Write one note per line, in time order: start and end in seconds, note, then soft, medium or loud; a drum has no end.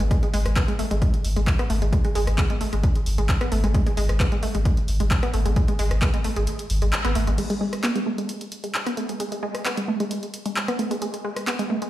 0.00 0.11 G#1 medium
0.00 0.06 G#3 medium
0.00 closed hi-hat medium
0.11 0.15 G#3 medium
0.11 kick loud
0.11 closed hi-hat medium
0.23 0.29 G#3 medium
0.23 closed hi-hat soft
0.33 0.45 G#1 loud
0.33 0.40 G#3 loud
0.33 open hi-hat loud
0.45 0.56 G#1 medium
0.45 cross-stick medium
0.45 closed hi-hat medium
0.56 0.63 B3 loud
0.56 kick loud
0.56 clap loud
0.56 closed hi-hat medium
0.68 0.79 G#1 medium
0.68 0.74 G#3 medium
0.68 closed hi-hat soft
0.79 0.85 A3 medium
0.79 open hi-hat medium
0.91 1.01 G#1 medium
0.91 0.94 G#3 medium
0.91 closed hi-hat soft
1.02 kick loud
1.02 closed hi-hat medium
1.14 closed hi-hat soft
1.24 1.36 G#1 loud
1.24 open hi-hat loud
1.36 1.47 G#1 medium
1.36 1.42 G#3 medium
1.36 closed hi-hat medium
1.47 kick loud
1.47 clap loud
1.59 1.69 G#1 medium
1.59 1.65 B3 loud
1.59 cross-stick medium
1.59 closed hi-hat soft
1.70 1.81 G#1 loud
1.70 1.76 A3 medium
1.70 open hi-hat medium
1.82 1.92 G#1 medium
1.82 1.88 G#3 medium
1.82 closed hi-hat soft
1.93 1.97 G#3 medium
1.93 kick loud
1.93 closed hi-hat medium
2.05 2.10 G#3 medium
2.05 closed hi-hat soft
2.15 2.27 G#1 loud
2.15 2.22 G#3 loud
2.15 open hi-hat loud
2.27 2.38 G#1 medium
2.27 cross-stick medium
2.27 closed hi-hat medium
2.38 2.44 B3 loud
2.38 kick loud
2.38 clap loud
2.38 closed hi-hat medium
2.50 2.61 G#1 medium
2.50 2.56 G#3 medium
2.50 closed hi-hat medium
2.61 2.67 A3 medium
2.61 open hi-hat medium
2.73 2.83 G#1 medium
2.73 2.76 G#3 medium
2.73 closed hi-hat soft
2.84 kick loud
2.84 closed hi-hat medium
2.96 closed hi-hat soft
3.06 3.18 G#1 loud
3.06 open hi-hat loud
3.18 3.29 G#1 medium
3.18 3.24 G#3 medium
3.18 closed hi-hat medium
3.29 kick loud
3.29 clap loud
3.41 3.51 G#1 medium
3.41 3.47 B3 loud
3.41 cross-stick medium
3.41 closed hi-hat soft
3.52 3.63 G#1 loud
3.52 3.58 A3 medium
3.52 open hi-hat medium
3.64 3.74 G#1 medium
3.64 3.69 G#3 medium
3.64 closed hi-hat medium
3.74 3.78 G#3 medium
3.74 kick loud
3.74 closed hi-hat medium
3.87 3.92 G#3 medium
3.87 closed hi-hat soft
3.97 4.08 G#1 loud
3.97 4.04 G#3 loud
3.97 open hi-hat loud
4.09 4.20 G#1 medium
4.09 cross-stick medium
4.09 closed hi-hat medium
4.20 4.26 B3 loud
4.20 kick loud
4.20 clap loud
4.20 closed hi-hat medium
4.32 4.42 G#1 medium
4.32 4.38 G#3 medium
4.32 closed hi-hat soft
4.43 4.49 A3 medium
4.43 open hi-hat medium
4.55 4.65 G#1 medium
4.55 4.58 G#3 medium
4.55 closed hi-hat medium
4.65 kick loud
4.65 closed hi-hat medium
4.77 closed hi-hat soft
4.88 4.99 G#1 loud
4.88 open hi-hat loud
5.00 5.11 G#1 medium
5.00 5.06 G#3 medium
5.00 closed hi-hat medium
5.11 kick loud
5.11 clap loud
5.23 5.33 G#1 medium
5.23 5.29 B3 loud
5.23 cross-stick medium
5.23 closed hi-hat medium
5.34 5.45 G#1 loud
5.34 5.40 A3 medium
5.34 open hi-hat medium
5.46 5.56 G#1 medium
5.46 5.51 G#3 medium
5.46 closed hi-hat medium
5.56 5.60 G#3 medium
5.56 kick loud
5.56 closed hi-hat medium
5.68 5.74 G#3 medium
5.68 closed hi-hat medium
5.79 5.90 G#1 loud
5.79 5.85 G#3 loud
5.79 open hi-hat loud
5.91 6.02 G#1 medium
5.91 cross-stick medium
5.91 closed hi-hat medium
6.02 6.08 B3 loud
6.02 kick loud
6.02 clap loud
6.02 closed hi-hat medium
6.14 6.24 G#1 medium
6.14 6.19 G#3 medium
6.14 closed hi-hat medium
6.24 6.31 A3 medium
6.24 open hi-hat medium
6.36 6.47 G#1 medium
6.36 6.40 G#3 medium
6.36 closed hi-hat medium
6.47 closed hi-hat medium
6.59 closed hi-hat medium
6.70 6.81 G#1 loud
6.70 open hi-hat loud
6.82 6.92 G#1 medium
6.82 6.88 G#3 medium
6.82 closed hi-hat medium
6.93 clap loud
6.93 closed hi-hat soft
7.05 7.15 G#1 medium
7.05 7.10 B3 loud
7.05 cross-stick medium
7.05 closed hi-hat medium
7.15 7.27 G#1 loud
7.15 7.22 A3 medium
7.15 open hi-hat medium
7.27 7.38 G#1 medium
7.27 7.33 G#3 medium
7.27 closed hi-hat medium
7.38 7.42 G#3 medium
7.38 closed hi-hat medium
7.38 crash medium
7.50 7.56 G#3 medium
7.50 closed hi-hat medium
7.61 7.67 G#3 medium
7.73 cross-stick medium
7.73 closed hi-hat medium
7.84 7.90 B3 loud
7.84 clap loud
7.84 closed hi-hat medium
7.96 8.01 G#3 medium
7.96 closed hi-hat soft
8.06 8.13 A3 medium
8.18 8.22 G#3 medium
8.18 closed hi-hat medium
8.29 closed hi-hat medium
8.41 closed hi-hat soft
8.52 closed hi-hat medium
8.64 8.69 G#3 medium
8.64 closed hi-hat medium
8.74 clap loud
8.86 8.92 B3 loud
8.86 cross-stick medium
8.86 closed hi-hat medium
8.97 9.04 A3 medium
8.97 closed hi-hat medium
9.09 9.15 G#3 medium
9.09 closed hi-hat medium
9.20 9.24 G#3 medium
9.20 closed hi-hat medium
9.32 9.38 G#3 medium
9.32 closed hi-hat medium
9.43 9.49 G#3 loud
9.55 cross-stick medium
9.55 closed hi-hat medium
9.65 9.72 B3 loud
9.65 clap loud
9.65 closed hi-hat medium
9.77 9.83 G#3 medium
9.77 closed hi-hat medium
9.88 9.95 A3 medium
10.00 10.04 G#3 medium
10.00 closed hi-hat medium
10.11 closed hi-hat medium
10.23 closed hi-hat soft
10.34 closed hi-hat medium
10.46 10.51 G#3 medium
10.46 closed hi-hat medium
10.56 clap loud
10.68 10.74 B3 loud
10.68 cross-stick medium
10.68 closed hi-hat medium
10.79 10.85 A3 medium
10.79 closed hi-hat medium
10.91 10.97 G#3 medium
10.91 closed hi-hat medium
11.02 11.06 G#3 medium
11.02 closed hi-hat medium
11.14 11.20 G#3 medium
11.14 closed hi-hat medium
11.25 11.31 G#3 medium
11.36 cross-stick medium
11.36 closed hi-hat medium
11.47 11.54 B3 loud
11.47 clap loud
11.47 closed hi-hat medium
11.59 11.65 G#3 medium
11.59 closed hi-hat medium
11.70 11.76 A3 medium
11.82 11.85 G#3 medium
11.82 closed hi-hat medium